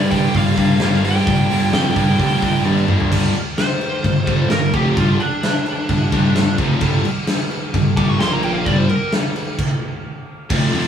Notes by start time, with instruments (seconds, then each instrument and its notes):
Already playing: distorted electric guitar G2 D3 G3 A#3 D4, picked electric bass G2, lead electric guitar D5
0.11 distorted electric guitar G2 D3 G3 A#3 D4, lead electric guitar G5, kick, open hi-hat
0.34 picked electric bass G1, distorted electric guitar G2 D3 G3 A#3 D4, lead electric guitar F5, kick, open hi-hat
0.57 distorted electric guitar G2 D3 G3 A#3 D4, picked electric bass G2, kick, open hi-hat
0.80 picked electric bass G1, distorted electric guitar G2 D3 G3 A#3 D4, snare, open hi-hat
0.93 snare
1.04 distorted electric guitar G2 D3 G3 A#3 D4, lead electric guitar G5, open hi-hat
1.16 snare
1.27 picked electric bass G1, distorted electric guitar G2 D3 G3 A#3 D4, kick, open hi-hat
1.50 picked electric bass G1, distorted electric guitar G2 D3 G3 A#3 D4, open hi-hat
1.73 picked electric bass F2, distorted electric guitar G2 D3 G3 A#3 D4, snare, open hi-hat
1.96 picked electric bass G1, distorted electric guitar G2 D3 G3 A#3 D4, kick, open hi-hat
2.19 picked electric bass F1, distorted electric guitar G2 D3 G3 A#3 D4, kick, open hi-hat
2.41 picked electric bass G1, distorted electric guitar G2 D3 G3 A#3 D4, kick, open hi-hat
2.64 distorted electric guitar G2 D3 G3 A#3 D4, picked electric bass G2, high tom
2.88 picked electric bass G1, distorted electric guitar G2 D3 G3 A#3 D4, mid tom
3.00 floor tom
3.11 picked electric bass G1, distorted electric guitar G2 D3 G3, kick, crash
3.33 muted picked electric bass stroke, muted distorted electric guitar stroke, muted overdriven electric guitar stroke, crash
3.58 lead electric guitar C5, snare, crash
3.81 crash
4.04 picked electric bass G1, distorted electric guitar G2 D3, kick, crash
4.26 picked electric bass G1, distorted electric guitar G2 D3 G3, kick, crash
4.49 picked electric bass G1, distorted electric guitar G2 D3, lead electric guitar A#4, snare, crash
4.73 picked electric bass F1, distorted electric guitar F2 C3 F3, lead electric guitar G4, kick, crash
4.97 picked electric bass G1, distorted electric guitar G2 D3 G3, lead electric guitar F4, kick, crash
5.18 lead electric guitar D4, muted overdriven electric guitar stroke, muted picked electric bass stroke, muted distorted electric guitar stroke, crash
5.43 snare, crash
5.66 crash
5.89 picked electric bass G1, distorted electric guitar G2 D3, kick, crash
6.12 picked electric bass G1, distorted electric guitar G2 D3 G3, kick, crash
6.35 picked electric bass G1, distorted electric guitar G2 D3, snare, crash
6.58 picked electric bass F1, distorted electric guitar F2 C3 F3, kick, crash
6.81 picked electric bass G1, distorted electric guitar G2 D3 G3, kick, crash
7.05 muted overdriven electric guitar stroke, muted picked electric bass stroke, muted distorted electric guitar stroke, crash
7.27 snare, crash
7.51 crash
7.74 picked electric bass G1, distorted electric guitar G2 D3, kick, crash
7.97 picked electric bass G1, distorted electric guitar G2 D3 G3, lead electric guitar D6, kick, crash
8.09 lead electric guitar C#6
8.19 picked electric bass A#1, distorted electric guitar A#2 F3 A#3, lead electric guitar C6, snare, crash
8.33 lead electric guitar A#5
8.43 lead electric guitar G5, crash
8.54 lead electric guitar F5
8.65 picked electric bass G1, distorted electric guitar G2 D3 G3, lead electric guitar D5, kick, crash
8.78 lead electric guitar C5
8.89 lead electric guitar A#4, muted distorted electric guitar stroke, muted picked electric bass stroke, muted overdriven electric guitar stroke, crash
9.12 snare, crash
9.36 crash
9.59 kick, crash
10.50 picked electric bass F1, distorted electric guitar F2 C3 F3 A3 C4, kick, crash
10.73 picked electric bass F1, distorted electric guitar F2 C3 F3 A3 C4, open hi-hat